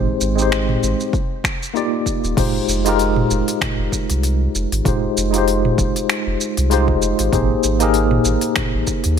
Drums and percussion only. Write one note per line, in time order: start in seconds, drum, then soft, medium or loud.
0.21 shaker medium
0.39 shaker soft
0.52 finger snap medium
0.52 shaker soft
0.69 mid tom medium
0.83 shaker medium
1.00 shaker soft
1.13 kick loud
1.13 shaker soft
1.44 finger snap medium
1.44 kick loud
1.44 shaker medium
1.63 shaker soft
1.76 shaker soft
2.06 kick medium
2.06 shaker medium
2.24 shaker soft
2.37 kick loud
2.37 mid tom medium
2.37 open hi-hat soft
2.37 crash loud
2.37 shaker soft
2.69 shaker medium
2.86 open hi-hat medium
2.86 shaker soft
2.99 open hi-hat soft
2.99 shaker soft
3.16 mid tom medium
3.31 shaker medium
3.48 open hi-hat medium
3.48 shaker soft
3.61 finger snap medium
3.61 kick loud
3.61 mid tom medium
3.61 open hi-hat soft
3.61 shaker soft
3.92 kick medium
3.92 shaker medium
4.10 open hi-hat medium
4.10 shaker soft
4.23 open hi-hat soft
4.23 shaker soft
4.55 shaker medium
4.72 open hi-hat medium
4.72 shaker soft
4.85 kick loud
4.85 mid tom medium
4.85 open hi-hat soft
4.85 shaker soft
5.17 shaker medium
5.34 open hi-hat medium
5.34 shaker soft
5.48 open hi-hat soft
5.48 shaker soft
5.65 mid tom medium
5.78 kick loud
5.78 shaker medium
5.96 open hi-hat medium
5.96 shaker soft
6.09 finger snap medium
6.09 open hi-hat soft
6.09 shaker soft
6.41 shaker medium
6.57 open hi-hat medium
6.57 shaker soft
6.71 open hi-hat soft
6.71 shaker soft
6.88 kick medium
7.02 shaker medium
7.19 open hi-hat medium
7.19 shaker soft
7.33 kick loud
7.33 mid tom medium
7.33 open hi-hat soft
7.33 shaker soft
7.63 shaker medium
7.80 open hi-hat medium
7.80 shaker soft
7.94 open hi-hat soft
7.94 shaker soft
8.11 mid tom medium
8.25 shaker medium
8.41 open hi-hat medium
8.41 shaker soft
8.56 finger snap medium
8.56 kick loud
8.56 mid tom medium
8.56 open hi-hat soft
8.56 shaker soft
8.87 kick medium
8.87 shaker medium
9.04 open hi-hat medium
9.04 shaker soft